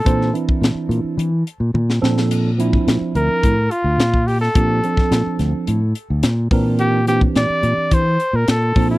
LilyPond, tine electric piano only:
\new Staff \with { instrumentName = "Tine electric piano" } { \time 4/4 \key c \mixolydian \tempo 4 = 107 <e c' d' c''>8 <e c' d' e'>4. r4. <f c' d' a'>8~ | <f c' d' a'>8 <f c' d' e'>4. r2 | <f c' d' g'>8 <f c' d' a'>4. r4. <e c' d' bes'>8~ | <e c' d' bes'>8 <e c' d' g'>4. r4. <f c' d' a'>8 | }